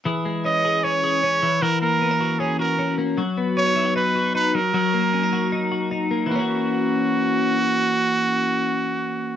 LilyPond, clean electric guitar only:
\new Staff \with { instrumentName = "Clean electric guitar" } { \time 4/4 \key fis \mixolydian \tempo 4 = 154 <e gis'>8 gis8 cis'8 gis'8 cis'8 gis'8 cis'8 e8 | <e fis'>8 ais8 b16 cis'16 fis'8 cis'8 fis'8 cis'8 ais8 | <fis fis'>8 b8 cis'16 dis'16 e'16 fis'16 dis'8 fis'8 dis'8 fis8 | <fis fis'>8 ais8 cis'16 dis'16 fis'8 dis'8 fis'8 dis'8 ais8 |
<e ais cis' fis'>1~ | <e ais cis' fis'>1 | }